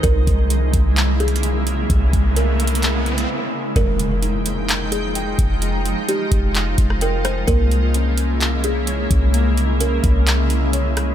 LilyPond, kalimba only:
\new Staff \with { instrumentName = "Kalimba" } { \time 4/4 \key f \minor \tempo 4 = 129 bes'2~ bes'8 aes'4. | r4 bes'4 r2 | bes'2~ bes'8 aes'4. | r4 g'4 r4 bes'8 c''8 |
bes'2~ bes'8 aes'4. | r4 bes'4 r2 | }